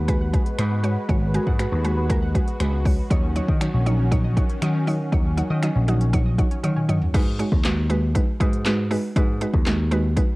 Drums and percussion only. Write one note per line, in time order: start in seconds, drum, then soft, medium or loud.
0.08 kick medium
0.08 closed hi-hat medium
0.33 kick loud
0.33 closed hi-hat medium
0.46 closed hi-hat soft
0.59 finger snap loud
0.59 closed hi-hat loud
0.84 closed hi-hat medium
1.09 kick loud
1.09 closed hi-hat medium
1.34 closed hi-hat medium
1.47 kick medium
1.59 finger snap loud
1.59 closed hi-hat medium
1.85 closed hi-hat medium
2.10 kick medium
2.10 closed hi-hat loud
2.35 kick medium
2.35 closed hi-hat medium
2.48 closed hi-hat soft
2.60 finger snap loud
2.60 closed hi-hat loud
2.85 kick loud
2.85 open hi-hat medium
3.11 kick loud
3.11 closed hi-hat medium
3.36 closed hi-hat medium
3.48 kick medium
3.61 finger snap loud
3.61 closed hi-hat medium
3.86 closed hi-hat medium
4.12 kick medium
4.12 closed hi-hat medium
4.37 kick loud
4.37 closed hi-hat medium
4.49 closed hi-hat soft
4.62 finger snap loud
4.62 closed hi-hat loud
4.87 open hi-hat medium
5.12 kick loud
5.12 closed hi-hat medium
5.38 closed hi-hat medium
5.63 finger snap loud
5.63 closed hi-hat medium
5.88 closed hi-hat medium
6.01 closed hi-hat medium
6.13 kick loud
6.13 closed hi-hat loud
6.38 kick loud
6.38 closed hi-hat medium
6.51 closed hi-hat soft
6.64 closed hi-hat loud
6.64 high tom medium
6.77 mid tom medium
6.89 closed hi-hat medium
6.89 mid tom medium
7.02 floor tom medium
7.14 kick loud
7.14 closed hi-hat medium
7.14 crash loud
7.39 closed hi-hat medium
7.52 kick loud
7.64 snare loud
7.64 clap loud
7.64 closed hi-hat medium
7.90 closed hi-hat medium
8.15 kick loud
8.15 closed hi-hat loud
8.40 kick loud
8.40 closed hi-hat medium
8.53 closed hi-hat soft
8.66 snare medium
8.66 clap loud
8.66 closed hi-hat loud
8.91 open hi-hat medium
9.16 kick loud
9.16 closed hi-hat medium
9.41 closed hi-hat medium
9.54 kick loud
9.66 snare loud
9.66 clap loud
9.66 closed hi-hat medium
9.92 closed hi-hat medium
10.17 kick loud
10.17 closed hi-hat loud